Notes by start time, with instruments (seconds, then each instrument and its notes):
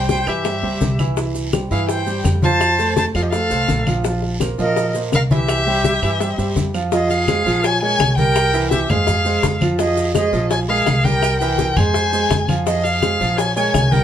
Already playing: upright bass C2, grand piano G3 G4 C5
0.09 flute C5, violin G5, high bongo, high conga, short guiro, maracas
0.27 upright bass G2, grand piano E3 E4 E5, flute G4, violin E5, high bongo, high conga, short guiro, claves, maracas
0.45 grand piano G3 G4 C5, high bongo, high conga, long guiro, maracas
0.63 upright bass C#2, grand piano G3 G4 C5, high bongo, high conga
0.81 upright bass C2, high bongo, low bongo, high conga, short guiro, maracas
0.99 grand piano E3 E4 E5, high conga, short guiro, claves, maracas
1.17 grand piano E3 E4 E5, high bongo, high conga, long guiro, maracas
1.35 high bongo, high conga, maracas
1.53 grand piano G3 G4 C5, high bongo, high conga, short guiro, claves, maracas
1.71 upright bass G2, grand piano E3 E4 E5, flute G#4, violin F5, high bongo, high conga, short guiro, maracas
1.88 flute C5, violin G5, high bongo, high conga, long guiro, maracas
2.07 grand piano G3 G4 C5, high bongo, high conga, maracas
2.24 upright bass F2, high bongo, low bongo, high conga, short guiro, claves, maracas
2.42 grand piano F3 F4 F5, flute C5, violin A5, high conga, short guiro, maracas
2.60 high bongo, high conga, long guiro, claves, maracas
2.78 grand piano A3 A4 C5, high bongo, high conga, maracas
2.96 flute C5, violin A5, high bongo, high conga, short guiro, maracas
3.15 upright bass F2, grand piano F3 F4 F5, flute A4, violin F5, high bongo, high conga, short guiro, claves, maracas
3.22 flute G4, violin D#5
3.29 flute A4, violin F5, high bongo, high conga, long guiro, maracas
3.33 grand piano A3 A4 C5
3.50 upright bass C2, grand piano A3 A4 C5, high bongo, high conga, maracas
3.68 upright bass A#1, high bongo, low bongo, high conga, short guiro, maracas
3.87 grand piano F3 F4 F5, high conga, short guiro, claves, maracas
4.04 grand piano F3 F4 F5, high bongo, high conga, long guiro, maracas
4.22 high bongo, high conga
4.40 grand piano A#3 A#4 C5, high bongo, high conga, short guiro, claves, maracas
4.58 upright bass A#2, grand piano F3 F4 F5, flute A#4, violin D#5, high bongo, high conga, short guiro, maracas
4.76 high bongo, high conga, long guiro, maracas
4.94 grand piano A#3 A#4 C5, high bongo, high conga, maracas
5.12 upright bass C2, flute A#4, violin F5, high bongo, low bongo, high conga, short guiro, claves, maracas
5.31 grand piano E3 E4 E5, flute G4, violin E5, high conga, short guiro, maracas
5.49 high bongo, high conga, long guiro, claves, maracas
5.67 grand piano G3 G4 C5, high bongo, high conga
5.84 high bongo, high conga, short guiro, maracas
6.02 upright bass G2, grand piano E3 E4 E5, high bongo, high conga, short guiro, claves, maracas
6.20 grand piano G3 G4 C5, high bongo, high conga, long guiro, maracas
6.38 upright bass G2, grand piano G3 G4 C5, high bongo, high conga, maracas
6.56 upright bass F2, high bongo, low bongo, high conga, short guiro, maracas
6.74 grand piano F3 F4 F5, short guiro, claves, maracas
6.92 grand piano F3 F4 F5, flute G#4, violin D#5, high bongo, high conga, long guiro, maracas
7.10 flute G#4, violin F5, high bongo, high conga, maracas
7.28 grand piano G#3 G#4 C5, high bongo, high conga, short guiro, claves, maracas
7.46 upright bass A#1, grand piano F3 F4 F5, high bongo, short guiro, maracas
7.63 flute C#5, violin G#5, high bongo, high conga, long guiro, maracas
7.82 grand piano G#3 G#4 A#4, flute C#5, violin G#5, high bongo, high conga
7.99 upright bass C2, high bongo, low bongo, high conga, short guiro, claves, maracas
8.18 grand piano G3 G4 A#4, flute A#4, violin G5, high conga, short guiro, maracas
8.36 high bongo, high conga, long guiro, claves, maracas
8.53 grand piano E3 E4 E5, high bongo, high conga, maracas
8.71 flute G4, violin E5, high bongo, high conga, short guiro, maracas
8.89 upright bass F2, grand piano G#3 G#4 C5, flute G#4, violin F5, high bongo, high conga, low conga, short guiro, claves, maracas
9.07 high bongo, high conga, low conga, long guiro, maracas
9.25 grand piano G#3 G#4 C5, high bongo, high conga, maracas
9.43 upright bass F2, high bongo, low bongo, high conga, short guiro, maracas
9.61 grand piano F3 F4 F5, high conga, short guiro, claves, maracas
9.78 grand piano F3 F4 F5, flute G#4, violin D#5, high bongo, high conga, long guiro, maracas
9.97 high bongo, high conga, maracas
10.15 grand piano G#3 G#4 C5, flute G#4, violin D#5, high bongo, high conga, short guiro, claves, maracas
10.33 upright bass A#1, grand piano F3 F4 F5, high bongo, short guiro, maracas
10.50 flute C#5, violin G#5, high bongo, high conga, long guiro, maracas
10.68 grand piano G#3 G#4 A#4, flute G#4, violin F5, high bongo, high conga
10.86 upright bass C2, high bongo, low bongo, high conga, short guiro, claves, maracas
11.04 grand piano G3 G4 A#4, flute A#4, violin G5, high conga, short guiro, maracas
11.22 high bongo, long guiro, claves, maracas
11.40 grand piano E3 E4 E5, flute A#4, violin G5, high bongo, high conga, maracas
11.58 high bongo, high conga, short guiro, maracas
11.76 upright bass F2, grand piano G#3 G#4 C5, flute C5, violin G#5, high bongo, high conga, low conga, short guiro, claves, maracas
11.94 high bongo, high conga, long guiro, maracas
12.13 grand piano G#3 G#4 C5, high bongo, high conga, maracas
12.30 upright bass F2, high bongo, low bongo, high conga, short guiro, maracas
12.48 grand piano F3 F4 F5, high conga, short guiro, claves, maracas
12.65 grand piano F3 F4 F5, flute G#4, violin D#5, high bongo, high conga, long guiro, maracas
12.83 flute G#4, violin F5, high bongo, high conga, maracas
13.02 grand piano G#3 G#4 C5, high bongo, high conga, short guiro, claves, maracas
13.20 upright bass A#1, grand piano F3 F4 F5, high bongo, short guiro, maracas
13.37 flute C#5, violin G#5, high bongo, high conga, long guiro, maracas
13.55 grand piano G#3 G#4 A#4, flute C#5, violin G#5, high bongo, high conga, maracas
13.74 upright bass C2, high bongo, low bongo, high conga, short guiro, claves, maracas
13.92 grand piano G3 G4 A#4, flute A#4, violin G5, high conga, short guiro, maracas